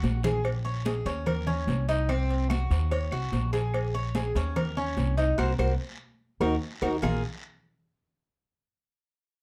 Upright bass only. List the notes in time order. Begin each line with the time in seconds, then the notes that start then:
0.03 A#1
1.05 D#2
1.67 C2
2.70 D#2
3.12 C2
3.32 A#1
4.35 D#2
4.97 C2
5.38 C2
5.59 C2
6.40 D#2
6.82 D#2
7.03 A#1